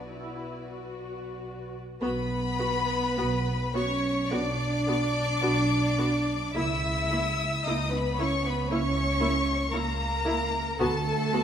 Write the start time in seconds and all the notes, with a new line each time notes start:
Already playing: B1 B3 F#4 B4 D5
0.09 E4
0.72 F#4
2.01 B1 B3 F#4 B4 B5
2.59 B3 F#4
3.17 B1 B3 F#4
3.74 B3 C#4 F#4 C#5 C#6
4.31 B1 B3 D4 F#4 D5 D6
4.87 B3 F#4
5.42 B1 B3 F#4
5.98 B3 F#4
6.55 C#2 A#3 E4 E5 E6
7.11 A#3 E4
7.66 C#2 A#3 D#4 E4 D#5 D#6
7.92 B3 B4 B5
8.18 A#3 C#4 E4 C#5 C#6
8.44 B3 B4 B5
8.69 C#2 A#3 C#4 E4 C#5 C#6
9.21 A#3 E4
9.72 C#2 A#3 E4 A#4 A#5
10.25 A#3 E4
10.78 D2 A3 B3 F#4 A4 A5
11.33 B3 F#4